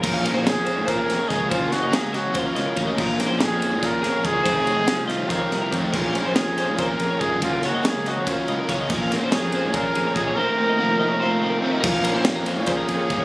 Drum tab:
CC |x------|-------|x------|-------|
RD |-xxxxxx|xxxxxxx|-xxxxxx|xxxxxxx|
SD |--o-ooo|-ooo-o-|-oo-oo-|--oooo-|
BD |o---o-o|o---o-o|o---o-o|o---o-o|

CC |x------|-------|x------|-------|
RD |-xxxxxx|xxxxxxx|-xxxxxx|-------|
SD |--ooo--|-ooo--o|-oo----|-------|
BD |o---o-o|o---o-o|o---o-o|-------|

CC |x------|
RD |-xxxxxx|
SD |--o-o--|
BD |o---o-o|